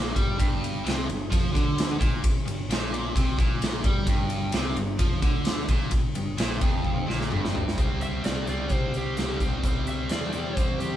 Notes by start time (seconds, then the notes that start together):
Already playing: A#1 A#2
0.15 G2 G3, kick, ride
0.38 G1 G2, kick, ride
0.64 ride
0.84 C2 C3, ride
0.88 snare
1.06 G1 G2, ride
1.30 F2 F3, kick, ride
1.53 D2 D3, kick, ride
1.78 snare, ride
1.98 A#1 A#2, kick, ride
2.24 kick, ride
2.45 G1 G2, ride
2.69 A#1 A#2, snare, ride
2.94 ride
3.16 C2 C3, kick, ride
3.39 A#1 A#2, kick, ride
3.62 snare, ride
3.84 G2 G3, kick, ride
4.07 G1 G2, kick, ride
4.30 ride
4.52 C2 C3, snare, ride
4.76 G1 G2, ride
4.99 F2 F3, kick, ride
5.22 D2 D3, kick, ride
5.45 snare, ride
5.68 A#1 A#2, kick, ride
5.91 kick, ride
6.15 G1 G2, ride
6.37 A#1 A#2, snare, ride
6.61 F1 F2, kick, ride
6.84 kick
6.96 high tom
7.06 A#1 A#2, snare
7.21 snare
7.31 G1 G2, mid tom
7.45 snare
7.55 floor tom
7.68 snare
7.78 C2 C3 G3 C4, kick, closed hi-hat
8.01 E5, closed hi-hat
8.23 C2 C3 G3 C4 D5, snare, closed hi-hat
8.46 C2 C3 G3 C4, closed hi-hat
8.50 D5
8.69 C2 C3 G3 C4, kick, closed hi-hat
8.73 C5
8.94 C2 G4, closed hi-hat
9.17 C2 C3 G3 C4, snare, closed hi-hat
9.40 C2 C3 G3 C4, kick, closed hi-hat
9.64 C2 C3 G3 C4, kick, closed hi-hat
9.87 C2 E5, closed hi-hat
10.09 E2 C3 G3 C4 D5, snare, closed hi-hat
10.33 E2 C3 G3 C4 D5, closed hi-hat
10.57 E2 C3 G3 C4 C5, kick, closed hi-hat
10.79 E2 G4, closed hi-hat